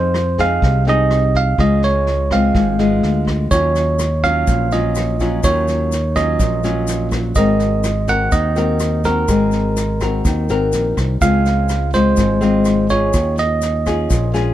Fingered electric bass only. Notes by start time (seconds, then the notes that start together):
Already playing: F2
0.62 C2
1.58 C#2
2.54 G#1
3.03 D2
3.51 D#2
4.47 A#1
5.44 D#2
6.39 A#1
7.35 G#1
8.32 D#2
9.29 G#1
10.25 D#2
10.50 G#1
10.73 A#1
10.97 C2
11.21 C#2
12.18 G#1
13.14 D#2
14.10 A#1